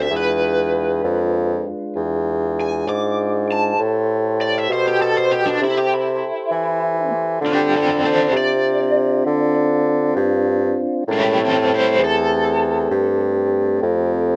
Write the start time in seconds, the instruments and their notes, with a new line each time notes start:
0.02 overdriven electric guitar E5
0.11 bassoon E2, tonewheel organ G#3 D4 F4
0.16 overdriven electric guitar B4
1.04 bassoon F2
1.96 bassoon E2
2.61 overdriven electric guitar G#5
2.87 bassoon G#2, overdriven electric guitar D6
3.52 overdriven electric guitar A5
3.78 bassoon A2, tonewheel organ G4 A4 C5
4.41 overdriven electric guitar D5
4.58 overdriven electric guitar E5
4.69 bassoon B2, overdriven electric guitar C5
4.87 overdriven electric guitar G4
5.02 overdriven electric guitar A4
5.17 overdriven electric guitar C5
5.31 overdriven electric guitar G4
5.46 overdriven electric guitar D4
5.61 bassoon C3, overdriven electric guitar E4
5.77 overdriven electric guitar G4
5.94 overdriven electric guitar E4
6.51 bassoon E3
7.41 bassoon D3, tonewheel organ C4 D4 F4
7.46 overdriven electric guitar D4 G4
7.76 overdriven electric guitar C4 A4
8.05 overdriven electric guitar A4 C5
8.32 bassoon C3
8.37 overdriven electric guitar D5
9.26 bassoon D3
10.16 bassoon G2
11.08 bassoon A2, tonewheel organ G#3 C#4 A#4
11.13 overdriven electric guitar E4 G4
11.37 tonewheel organ A3 C4 G4
11.45 overdriven electric guitar C4 A4
11.74 overdriven electric guitar E4 C5
11.99 bassoon E2
12.04 overdriven electric guitar A4
12.91 bassoon G2
13.83 bassoon F2